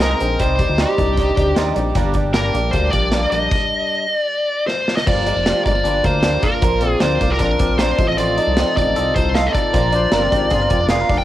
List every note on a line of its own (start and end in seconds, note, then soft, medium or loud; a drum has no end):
0.00 0.15 C2 medium
0.00 0.39 G#3 medium
0.00 0.20 G#3 medium
0.00 0.21 A#3 medium
0.00 0.20 C4 medium
0.00 0.39 D#4 medium
0.00 0.21 D#4 medium
0.00 0.11 G#4 medium
0.00 0.20 G#4 medium
0.00 0.41 A#4 medium
0.00 0.19 C5 medium
0.00 snare loud
0.00 closed hi-hat medium
0.11 0.44 A#4 medium
0.20 0.37 A#1 loud
0.20 0.44 C4 medium
0.20 0.39 D#4 soft
0.20 0.40 G#4 soft
0.20 0.40 C5 soft
0.20 closed hi-hat medium
0.39 0.65 C2 medium
0.39 0.59 C3 medium
0.39 0.59 G3 medium
0.39 0.60 G3 medium
0.39 0.59 C4 medium
0.39 0.60 D#4 medium
0.39 0.79 D#4 medium
0.39 0.59 G4 medium
0.39 0.80 C5 loud
0.39 0.57 D5 medium
0.39 kick loud
0.39 closed hi-hat medium
0.59 1.18 G3 medium
0.59 0.77 C4 soft
0.59 0.78 D#4 soft
0.59 0.79 G4 soft
0.59 0.79 D5 soft
0.59 kick medium
0.59 closed hi-hat medium
0.69 0.86 D2 loud
0.78 0.98 C3 medium
0.78 0.98 G3 medium
0.78 0.98 C4 medium
0.78 0.98 D#4 medium
0.78 1.56 D#4 medium
0.78 0.97 G4 medium
0.78 1.54 G4 medium
0.78 0.95 D5 medium
0.78 snare loud
0.78 closed hi-hat medium
0.97 1.32 C2 medium
0.97 1.15 C4 soft
0.97 1.36 D4 medium
0.97 1.17 D#4 soft
0.97 1.18 G4 soft
0.97 1.17 D5 soft
0.97 kick medium
0.97 closed hi-hat medium
1.16 1.75 G3 medium
1.16 1.37 C4 medium
1.16 1.37 D#4 medium
1.16 1.36 G4 medium
1.16 1.35 D5 medium
1.16 kick medium
1.16 snare soft
1.16 closed hi-hat medium
1.36 1.54 D2 medium
1.36 1.56 C4 medium
1.36 1.96 D4 medium
1.36 1.56 D#4 soft
1.36 1.56 G4 medium
1.36 1.56 D5 soft
1.36 kick medium
1.36 closed hi-hat medium
1.56 1.73 D#2 medium
1.56 1.76 C3 medium
1.56 1.76 G3 medium
1.56 1.76 C4 medium
1.56 1.96 D#4 medium
1.56 1.76 D#4 medium
1.56 1.75 G4 medium
1.56 1.73 D5 loud
1.56 snare loud
1.56 closed hi-hat medium
1.75 1.93 A#1 medium
1.75 1.95 G3 medium
1.75 1.96 C4 soft
1.75 1.96 D#4 medium
1.75 1.96 G4 medium
1.75 1.95 D5 medium
1.75 closed hi-hat medium
1.95 2.51 G1 loud
1.95 2.15 G3 medium
1.95 2.14 G3 medium
1.95 2.15 A#3 medium
1.95 2.34 D4 medium
1.95 2.15 D4 medium
1.95 2.13 G4 loud
1.95 kick loud
1.95 closed hi-hat medium
2.14 2.73 G3 medium
2.14 2.34 D4 medium
2.14 2.34 G4 medium
2.14 kick medium
2.14 closed hi-hat medium
2.18 2.34 A#3 soft
2.33 2.54 G3 medium
2.33 2.54 A#3 medium
2.33 3.12 D4 medium
2.33 2.53 D4 medium
2.33 2.52 G4 medium
2.33 2.70 A#4 medium
2.33 snare loud
2.33 closed hi-hat medium
2.53 2.71 A#1 medium
2.53 2.91 A#3 medium
2.53 2.72 A#3 soft
2.53 2.73 D4 soft
2.53 2.73 G4 medium
2.53 closed hi-hat medium
2.71 2.90 D2 medium
2.71 2.93 G3 medium
2.71 3.32 G3 medium
2.71 2.93 A#3 medium
2.71 2.92 D4 medium
2.71 2.90 C5 medium
2.71 kick medium
2.71 closed hi-hat medium
2.76 2.90 G4 medium
2.90 3.26 A#1 medium
2.90 3.55 A#3 medium
2.90 3.12 D4 soft
2.90 3.12 G4 medium
2.90 3.31 D5 loud
2.90 kick medium
2.90 closed hi-hat medium
2.95 3.11 A#3 soft
3.11 3.32 G3 medium
3.11 3.32 A#3 medium
3.11 4.05 D4 medium
3.11 3.31 D4 medium
3.11 3.30 G4 medium
3.11 snare loud
3.11 closed hi-hat medium
3.31 3.49 A#1 medium
3.31 4.05 G3 medium
3.31 3.53 A#3 soft
3.31 3.52 D4 soft
3.31 3.51 G4 soft
3.31 4.18 D#5 loud
3.31 closed hi-hat medium
3.51 kick loud
3.51 crash medium
4.18 4.64 D5 loud
4.67 4.95 C5 medium
4.67 snare medium
4.88 snare medium
4.96 5.07 D#5 medium
4.96 snare medium
5.07 5.32 G1 loud
5.07 5.46 F3 medium
5.07 5.27 G3 medium
5.07 5.27 D4 medium
5.07 5.27 F4 medium
5.07 5.25 A#4 medium
5.07 5.62 D5 medium
5.07 kick loud
5.07 crash medium
5.26 5.36 G#3 medium
5.26 5.45 D4 soft
5.26 5.46 F4 soft
5.26 5.46 A#4 soft
5.26 closed hi-hat medium
5.36 5.53 F1 medium
5.36 5.64 A#3 soft
5.46 6.61 F3 medium
5.46 5.65 G3 medium
5.46 5.66 D4 medium
5.46 5.65 F4 medium
5.46 5.63 A#4 medium
5.46 snare loud
5.46 closed hi-hat medium
5.64 5.82 G1 medium
5.64 5.75 G#3 medium
5.64 5.84 D4 soft
5.64 5.85 F4 soft
5.64 5.85 A#4 medium
5.64 6.05 D5 medium
5.64 kick medium
5.64 closed hi-hat medium
5.75 6.03 A#3 soft
5.84 6.01 G1 medium
5.84 6.04 G3 medium
5.84 6.22 D4 medium
5.84 6.05 D4 medium
5.84 6.04 F4 medium
5.84 6.02 A#4 medium
5.84 closed hi-hat medium
6.04 6.38 D2 medium
6.04 6.41 A#3 medium
6.04 6.23 D4 soft
6.04 6.23 F4 soft
6.04 6.24 A#4 medium
6.04 6.45 C5 medium
6.04 kick medium
6.04 closed hi-hat medium
6.23 6.43 G3 medium
6.23 6.66 D4 medium
6.23 6.43 D4 medium
6.23 6.43 F4 medium
6.23 6.41 A#4 medium
6.23 snare loud
6.23 closed hi-hat medium
6.42 6.66 A#3 medium
6.42 6.63 D4 soft
6.42 6.62 F4 soft
6.42 6.62 A#4 medium
6.42 6.90 A#4 medium
6.42 kick medium
6.42 closed hi-hat medium
6.62 6.96 A#1 loud
6.62 7.01 F3 medium
6.62 6.82 A#3 medium
6.62 6.83 C4 medium
6.62 6.83 F4 medium
6.62 6.82 A#4 medium
6.62 6.80 D5 medium
6.62 kick loud
6.62 closed hi-hat medium
6.81 7.21 C4 medium
6.81 7.02 A#4 soft
6.81 7.01 D5 medium
6.81 closed hi-hat medium
6.85 7.01 F4 soft
6.90 7.04 G#4 medium
7.00 7.18 D2 medium
7.00 7.98 F3 medium
7.00 7.21 A#3 medium
7.00 7.21 C4 medium
7.00 7.21 F4 medium
7.00 7.22 A#4 medium
7.00 7.31 C5 loud
7.00 7.20 D5 medium
7.00 snare loud
7.00 closed hi-hat medium
7.21 7.37 C2 loud
7.21 7.30 A#3 medium
7.21 7.40 F4 soft
7.21 7.41 A#4 medium
7.21 7.41 D5 medium
7.21 kick loud
7.21 closed hi-hat medium
7.30 7.58 C4 soft
7.30 7.38 A#4 medium
7.39 7.57 A#1 medium
7.39 7.60 C4 medium
7.39 7.78 D4 medium
7.39 7.61 F4 medium
7.39 7.80 A#4 medium
7.39 7.60 A#4 medium
7.39 kick medium
7.39 snare soft
7.39 closed hi-hat medium
7.44 7.58 D5 medium
7.59 7.93 A#1 medium
7.59 8.56 C4 medium
7.59 7.79 F4 soft
7.59 7.80 A#4 medium
7.59 7.79 D5 medium
7.59 kick medium
7.59 closed hi-hat medium
7.78 7.99 A#3 medium
7.78 7.99 C4 medium
7.78 8.03 D4 medium
7.78 7.99 F4 medium
7.78 8.00 A#4 medium
7.78 8.08 C5 medium
7.78 7.98 D5 medium
7.78 snare loud
7.78 closed hi-hat medium
7.98 8.40 A1 loud
7.98 8.17 F3 medium
7.98 8.19 F4 soft
7.98 8.19 A4 soft
7.98 8.18 D#5 medium
7.98 kick loud
7.98 closed hi-hat medium
8.08 8.17 D#5 medium
8.18 9.73 F3 medium
8.18 8.38 A3 medium
8.18 8.38 C4 medium
8.18 8.39 F4 medium
8.18 8.38 A4 medium
8.18 8.75 D5 loud
8.18 8.37 D#5 medium
8.18 closed hi-hat medium
8.37 8.75 D#4 medium
8.37 8.58 F4 soft
8.37 8.58 A4 soft
8.37 8.57 D#5 medium
8.37 closed hi-hat medium
8.47 8.64 C2 medium
8.57 8.77 A3 medium
8.57 9.77 C4 medium
8.57 8.77 C4 medium
8.57 8.77 F4 medium
8.57 8.76 A4 medium
8.57 8.74 D#5 medium
8.57 snare loud
8.57 closed hi-hat medium
8.76 8.94 A1 loud
8.76 9.14 D#4 medium
8.76 8.95 F4 soft
8.76 8.96 A4 soft
8.76 9.15 D5 medium
8.76 8.96 D#5 medium
8.76 kick medium
8.76 closed hi-hat medium
8.95 9.13 C2 medium
8.95 9.15 C4 medium
8.95 9.15 F4 medium
8.95 9.33 A4 medium
8.95 9.15 A4 medium
8.95 9.13 D#5 medium
8.95 closed hi-hat medium
9.14 9.49 C2 medium
9.14 9.53 D#4 medium
9.14 9.34 F4 soft
9.14 9.35 A4 medium
9.14 9.36 C5 medium
9.14 9.34 D#5 medium
9.14 kick medium
9.14 closed hi-hat medium
9.34 9.54 A3 medium
9.34 9.54 C4 medium
9.34 9.54 F4 medium
9.34 9.77 A4 medium
9.34 9.55 A4 medium
9.34 9.53 D#5 medium
9.34 9.48 F5 loud
9.34 snare loud
9.34 closed hi-hat medium
9.46 9.53 D#5 medium
9.53 9.78 D#4 medium
9.53 9.75 A4 soft
9.53 10.86 D5 loud
9.53 9.74 D#5 medium
9.53 kick medium
9.53 closed hi-hat medium
9.57 9.74 F4 soft
9.73 10.07 A#1 loud
9.73 11.24 F3 medium
9.73 9.93 A#3 medium
9.73 9.93 C4 medium
9.73 9.94 F4 medium
9.73 9.93 A#4 medium
9.73 9.91 D5 medium
9.73 kick loud
9.73 closed hi-hat medium
9.92 10.31 D4 medium
9.92 10.12 F4 soft
9.92 10.12 A#4 soft
9.92 10.15 C5 loud
9.92 10.12 D5 medium
9.92 closed hi-hat medium
10.12 10.29 G1 loud
10.12 10.32 A#3 medium
10.12 10.32 C4 medium
10.12 10.70 C4 medium
10.12 10.32 F4 medium
10.12 10.25 A#4 medium
10.12 10.31 A#4 medium
10.12 10.29 D5 medium
10.12 snare loud
10.12 closed hi-hat medium
10.23 10.33 F4 medium
10.31 10.49 G#1 medium
10.31 10.70 D4 medium
10.31 10.50 F4 soft
10.31 10.51 G4 medium
10.31 10.51 A#4 medium
10.31 10.51 D5 medium
10.31 kick medium
10.31 closed hi-hat medium
10.50 10.68 G1 medium
10.50 10.70 C4 medium
10.50 10.71 F4 medium
10.50 10.79 F4 medium
10.50 10.61 G#4 medium
10.50 10.70 A#4 medium
10.50 10.68 D5 medium
10.50 kick medium
10.50 snare soft
10.50 closed hi-hat medium
10.61 10.90 A#4 medium
10.70 11.04 F1 medium
10.70 10.81 C4 medium
10.70 10.89 F4 soft
10.70 10.89 A#4 medium
10.70 10.90 D5 medium
10.70 kick medium
10.70 closed hi-hat medium
10.81 11.08 D4 soft
10.89 11.09 A#3 medium
10.89 11.09 C4 medium
10.89 11.10 F4 medium
10.89 11.01 G#4 medium
10.89 11.09 A#4 medium
10.89 11.07 D5 medium
10.89 11.17 F5 loud
10.89 snare loud
10.89 closed hi-hat medium
11.01 11.24 A#4 medium
11.09 11.24 F1 medium
11.09 11.24 D4 medium
11.09 11.24 F4 soft
11.09 11.24 A#4 soft
11.09 11.24 D5 medium
11.09 kick medium
11.09 open hi-hat medium
11.18 11.24 G5 loud